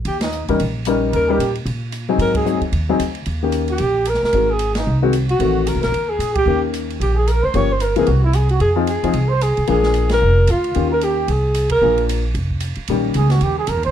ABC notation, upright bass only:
X:1
M:4/4
L:1/8
Q:"Swing" 1/4=224
K:Ebmix
V:1 name="Upright bass" clef=bass
E,,3 _F,, B,,,4 | E,,2 B,,2 B,,4 | A,,3 z E,,2 =D,,2 | E,,4 B,,,3 z |
A,,,4 C,,4 | =A,,,2- (3A,,, C,, B,,, E,,2 B,,2 | E,,4 B,,,3 =D,, | G,,,3 D,, C,,4 |
F,,3 _F,, C,,3 C,, | B,,,4 F,,,2 =D,,2 | E,,4 C,,4 | B,,,4 F,,,3 z |
B,,,2 D,,2 E,,2 (3F,, E,, D,, |]